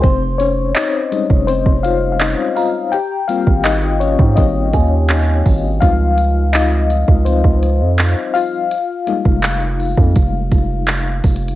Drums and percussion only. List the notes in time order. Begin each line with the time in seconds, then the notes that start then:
0.04 kick, closed hi-hat
0.40 closed hi-hat
0.76 clap, closed hi-hat
1.12 closed hi-hat
1.30 kick
1.48 closed hi-hat
1.66 kick
1.84 closed hi-hat
2.20 clap, closed hi-hat
2.57 open hi-hat
2.93 closed hi-hat
3.29 closed hi-hat
3.47 kick
3.65 clap, closed hi-hat
4.01 closed hi-hat
4.19 kick
4.37 kick, closed hi-hat
4.73 kick, closed hi-hat
5.09 clap, closed hi-hat
5.46 kick, open hi-hat
5.82 kick, closed hi-hat
6.18 closed hi-hat
6.54 clap, closed hi-hat
6.90 closed hi-hat
7.08 kick
7.26 closed hi-hat
7.44 kick
7.63 closed hi-hat
7.99 clap, closed hi-hat
8.35 open hi-hat
8.71 closed hi-hat
9.07 closed hi-hat
9.25 kick
9.43 clap, closed hi-hat
9.80 open hi-hat
9.97 kick
10.16 kick, closed hi-hat
10.52 kick, closed hi-hat
10.88 clap, closed hi-hat
11.24 kick, closed hi-hat, open hi-hat
11.36 closed hi-hat
11.48 closed hi-hat